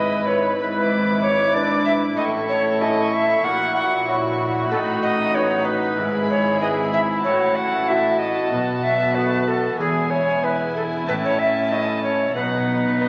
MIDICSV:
0, 0, Header, 1, 8, 480
1, 0, Start_track
1, 0, Key_signature, 4, "major"
1, 0, Tempo, 634249
1, 1653, Time_signature, 4, 2, 24, 8
1, 6449, Tempo, 641026
1, 9866, End_track
2, 0, Start_track
2, 0, Title_t, "Violin section"
2, 0, Program_c, 0, 48
2, 0, Note_on_c, 0, 83, 41
2, 653, Note_off_c, 0, 83, 0
2, 690, Note_on_c, 0, 86, 48
2, 1652, Note_off_c, 0, 86, 0
2, 1657, Note_on_c, 0, 85, 51
2, 3571, Note_on_c, 0, 83, 52
2, 3572, Note_off_c, 0, 85, 0
2, 5459, Note_off_c, 0, 83, 0
2, 5487, Note_on_c, 0, 81, 51
2, 7374, Note_off_c, 0, 81, 0
2, 7401, Note_on_c, 0, 80, 46
2, 8339, Note_off_c, 0, 80, 0
2, 8359, Note_on_c, 0, 81, 49
2, 9319, Note_on_c, 0, 78, 39
2, 9322, Note_off_c, 0, 81, 0
2, 9749, Note_off_c, 0, 78, 0
2, 9809, Note_on_c, 0, 75, 46
2, 9866, Note_off_c, 0, 75, 0
2, 9866, End_track
3, 0, Start_track
3, 0, Title_t, "Recorder"
3, 0, Program_c, 1, 74
3, 0, Note_on_c, 1, 75, 61
3, 199, Note_on_c, 1, 73, 55
3, 211, Note_off_c, 1, 75, 0
3, 444, Note_off_c, 1, 73, 0
3, 452, Note_on_c, 1, 71, 66
3, 919, Note_off_c, 1, 71, 0
3, 923, Note_on_c, 1, 73, 69
3, 1165, Note_on_c, 1, 74, 62
3, 1177, Note_off_c, 1, 73, 0
3, 1398, Note_off_c, 1, 74, 0
3, 1402, Note_on_c, 1, 76, 62
3, 1457, Note_off_c, 1, 76, 0
3, 1639, Note_on_c, 1, 75, 67
3, 1695, Note_off_c, 1, 75, 0
3, 1884, Note_on_c, 1, 73, 64
3, 2130, Note_on_c, 1, 75, 68
3, 2142, Note_off_c, 1, 73, 0
3, 2372, Note_on_c, 1, 76, 72
3, 2383, Note_off_c, 1, 75, 0
3, 2606, Note_on_c, 1, 78, 72
3, 2617, Note_off_c, 1, 76, 0
3, 2840, Note_off_c, 1, 78, 0
3, 2844, Note_on_c, 1, 78, 70
3, 3083, Note_off_c, 1, 78, 0
3, 3564, Note_on_c, 1, 69, 65
3, 3619, Note_off_c, 1, 69, 0
3, 3805, Note_on_c, 1, 75, 65
3, 4046, Note_on_c, 1, 73, 69
3, 4057, Note_off_c, 1, 75, 0
3, 4275, Note_on_c, 1, 71, 71
3, 4287, Note_off_c, 1, 73, 0
3, 4762, Note_off_c, 1, 71, 0
3, 4765, Note_on_c, 1, 73, 67
3, 4997, Note_off_c, 1, 73, 0
3, 5002, Note_on_c, 1, 75, 66
3, 5056, Note_off_c, 1, 75, 0
3, 5247, Note_on_c, 1, 76, 66
3, 5301, Note_off_c, 1, 76, 0
3, 5480, Note_on_c, 1, 73, 64
3, 5718, Note_on_c, 1, 78, 67
3, 5730, Note_off_c, 1, 73, 0
3, 5964, Note_on_c, 1, 76, 69
3, 5976, Note_off_c, 1, 78, 0
3, 6197, Note_on_c, 1, 75, 70
3, 6208, Note_off_c, 1, 76, 0
3, 6681, Note_on_c, 1, 76, 68
3, 6692, Note_off_c, 1, 75, 0
3, 6917, Note_on_c, 1, 71, 65
3, 6929, Note_off_c, 1, 76, 0
3, 7165, Note_on_c, 1, 69, 64
3, 7177, Note_off_c, 1, 71, 0
3, 7398, Note_off_c, 1, 69, 0
3, 7403, Note_on_c, 1, 68, 61
3, 7632, Note_on_c, 1, 73, 65
3, 7643, Note_off_c, 1, 68, 0
3, 7886, Note_on_c, 1, 71, 55
3, 7897, Note_off_c, 1, 73, 0
3, 8118, Note_off_c, 1, 71, 0
3, 8123, Note_on_c, 1, 69, 59
3, 8177, Note_off_c, 1, 69, 0
3, 8367, Note_on_c, 1, 71, 67
3, 8412, Note_off_c, 1, 71, 0
3, 8486, Note_on_c, 1, 73, 58
3, 8597, Note_on_c, 1, 76, 65
3, 8608, Note_off_c, 1, 73, 0
3, 8837, Note_on_c, 1, 75, 61
3, 8849, Note_off_c, 1, 76, 0
3, 9073, Note_off_c, 1, 75, 0
3, 9078, Note_on_c, 1, 73, 56
3, 9314, Note_off_c, 1, 73, 0
3, 9319, Note_on_c, 1, 71, 60
3, 9866, Note_off_c, 1, 71, 0
3, 9866, End_track
4, 0, Start_track
4, 0, Title_t, "Violin section"
4, 0, Program_c, 2, 48
4, 0, Note_on_c, 2, 71, 41
4, 1640, Note_on_c, 2, 69, 48
4, 1652, Note_off_c, 2, 71, 0
4, 2586, Note_off_c, 2, 69, 0
4, 2603, Note_on_c, 2, 66, 51
4, 4524, Note_off_c, 2, 66, 0
4, 4529, Note_on_c, 2, 68, 51
4, 5487, Note_on_c, 2, 66, 50
4, 5489, Note_off_c, 2, 68, 0
4, 7374, Note_off_c, 2, 66, 0
4, 7400, Note_on_c, 2, 64, 50
4, 9320, Note_off_c, 2, 64, 0
4, 9326, Note_on_c, 2, 63, 45
4, 9866, Note_off_c, 2, 63, 0
4, 9866, End_track
5, 0, Start_track
5, 0, Title_t, "Viola section"
5, 0, Program_c, 3, 48
5, 0, Note_on_c, 3, 64, 49
5, 3537, Note_off_c, 3, 64, 0
5, 3565, Note_on_c, 3, 63, 54
5, 4506, Note_off_c, 3, 63, 0
5, 4526, Note_on_c, 3, 64, 52
5, 6448, Note_off_c, 3, 64, 0
5, 6451, Note_on_c, 3, 59, 48
5, 8331, Note_off_c, 3, 59, 0
5, 8356, Note_on_c, 3, 61, 45
5, 9316, Note_on_c, 3, 59, 50
5, 9320, Note_off_c, 3, 61, 0
5, 9866, Note_off_c, 3, 59, 0
5, 9866, End_track
6, 0, Start_track
6, 0, Title_t, "Lute"
6, 0, Program_c, 4, 24
6, 0, Note_on_c, 4, 44, 38
6, 206, Note_on_c, 4, 59, 32
6, 209, Note_on_c, 4, 64, 33
6, 211, Note_on_c, 4, 71, 35
6, 658, Note_off_c, 4, 59, 0
6, 659, Note_off_c, 4, 64, 0
6, 660, Note_off_c, 4, 71, 0
6, 1170, Note_on_c, 4, 62, 35
6, 1177, Note_on_c, 4, 64, 34
6, 1178, Note_on_c, 4, 71, 37
6, 1619, Note_off_c, 4, 44, 0
6, 1622, Note_off_c, 4, 62, 0
6, 1625, Note_off_c, 4, 71, 0
6, 1626, Note_off_c, 4, 64, 0
6, 1650, Note_on_c, 4, 45, 42
6, 2126, Note_on_c, 4, 61, 35
6, 2129, Note_on_c, 4, 64, 36
6, 2133, Note_on_c, 4, 69, 36
6, 2578, Note_off_c, 4, 61, 0
6, 2579, Note_off_c, 4, 64, 0
6, 2580, Note_off_c, 4, 45, 0
6, 2581, Note_off_c, 4, 69, 0
6, 2608, Note_on_c, 4, 46, 45
6, 3087, Note_on_c, 4, 61, 38
6, 3089, Note_on_c, 4, 64, 39
6, 3093, Note_on_c, 4, 66, 39
6, 3537, Note_off_c, 4, 61, 0
6, 3538, Note_off_c, 4, 46, 0
6, 3539, Note_off_c, 4, 64, 0
6, 3540, Note_off_c, 4, 66, 0
6, 3569, Note_on_c, 4, 45, 43
6, 4051, Note_on_c, 4, 59, 38
6, 4052, Note_on_c, 4, 63, 34
6, 4055, Note_on_c, 4, 66, 40
6, 4497, Note_off_c, 4, 45, 0
6, 4499, Note_off_c, 4, 59, 0
6, 4499, Note_off_c, 4, 63, 0
6, 4501, Note_off_c, 4, 66, 0
6, 4526, Note_on_c, 4, 44, 46
6, 5009, Note_on_c, 4, 59, 36
6, 5011, Note_on_c, 4, 64, 36
6, 5015, Note_on_c, 4, 68, 41
6, 5458, Note_off_c, 4, 44, 0
6, 5459, Note_off_c, 4, 59, 0
6, 5460, Note_off_c, 4, 64, 0
6, 5461, Note_off_c, 4, 68, 0
6, 5494, Note_on_c, 4, 45, 43
6, 5973, Note_on_c, 4, 57, 36
6, 5976, Note_on_c, 4, 66, 37
6, 5978, Note_on_c, 4, 64, 35
6, 6421, Note_off_c, 4, 57, 0
6, 6422, Note_off_c, 4, 45, 0
6, 6422, Note_off_c, 4, 66, 0
6, 6423, Note_off_c, 4, 64, 0
6, 6450, Note_on_c, 4, 47, 43
6, 6931, Note_on_c, 4, 57, 37
6, 6934, Note_on_c, 4, 59, 36
6, 6938, Note_on_c, 4, 66, 38
6, 7375, Note_off_c, 4, 47, 0
6, 7377, Note_off_c, 4, 57, 0
6, 7378, Note_off_c, 4, 59, 0
6, 7381, Note_off_c, 4, 66, 0
6, 7402, Note_on_c, 4, 40, 40
6, 7877, Note_on_c, 4, 56, 32
6, 7881, Note_on_c, 4, 59, 31
6, 7885, Note_on_c, 4, 64, 34
6, 8328, Note_off_c, 4, 56, 0
6, 8329, Note_off_c, 4, 40, 0
6, 8331, Note_off_c, 4, 59, 0
6, 8331, Note_off_c, 4, 64, 0
6, 8358, Note_on_c, 4, 45, 41
6, 8837, Note_on_c, 4, 57, 34
6, 8839, Note_on_c, 4, 61, 33
6, 8841, Note_on_c, 4, 64, 35
6, 9291, Note_off_c, 4, 45, 0
6, 9291, Note_off_c, 4, 57, 0
6, 9291, Note_off_c, 4, 61, 0
6, 9293, Note_off_c, 4, 64, 0
6, 9320, Note_on_c, 4, 47, 38
6, 9808, Note_on_c, 4, 59, 29
6, 9811, Note_on_c, 4, 63, 31
6, 9866, Note_off_c, 4, 47, 0
6, 9866, Note_off_c, 4, 59, 0
6, 9866, Note_off_c, 4, 63, 0
6, 9866, End_track
7, 0, Start_track
7, 0, Title_t, "Cello section"
7, 0, Program_c, 5, 48
7, 0, Note_on_c, 5, 44, 47
7, 1650, Note_on_c, 5, 45, 50
7, 1652, Note_off_c, 5, 44, 0
7, 2591, Note_off_c, 5, 45, 0
7, 2607, Note_on_c, 5, 46, 49
7, 3549, Note_off_c, 5, 46, 0
7, 3574, Note_on_c, 5, 45, 52
7, 4526, Note_on_c, 5, 44, 51
7, 4530, Note_off_c, 5, 45, 0
7, 5485, Note_on_c, 5, 45, 50
7, 5488, Note_off_c, 5, 44, 0
7, 6447, Note_off_c, 5, 45, 0
7, 6453, Note_on_c, 5, 47, 50
7, 7407, Note_off_c, 5, 47, 0
7, 7408, Note_on_c, 5, 40, 49
7, 8343, Note_off_c, 5, 40, 0
7, 8362, Note_on_c, 5, 45, 46
7, 9323, Note_off_c, 5, 45, 0
7, 9329, Note_on_c, 5, 47, 44
7, 9866, Note_off_c, 5, 47, 0
7, 9866, End_track
8, 0, Start_track
8, 0, Title_t, "Double bass section"
8, 0, Program_c, 6, 48
8, 0, Note_on_c, 6, 32, 50
8, 1644, Note_on_c, 6, 33, 52
8, 1650, Note_off_c, 6, 32, 0
8, 2588, Note_off_c, 6, 33, 0
8, 2605, Note_on_c, 6, 34, 52
8, 3547, Note_off_c, 6, 34, 0
8, 3568, Note_on_c, 6, 33, 55
8, 4523, Note_on_c, 6, 32, 56
8, 4527, Note_off_c, 6, 33, 0
8, 5486, Note_off_c, 6, 32, 0
8, 5486, Note_on_c, 6, 33, 52
8, 6447, Note_on_c, 6, 35, 50
8, 6448, Note_off_c, 6, 33, 0
8, 7403, Note_on_c, 6, 28, 53
8, 7404, Note_off_c, 6, 35, 0
8, 8340, Note_off_c, 6, 28, 0
8, 8366, Note_on_c, 6, 33, 47
8, 9318, Note_on_c, 6, 35, 47
8, 9325, Note_off_c, 6, 33, 0
8, 9866, Note_off_c, 6, 35, 0
8, 9866, End_track
0, 0, End_of_file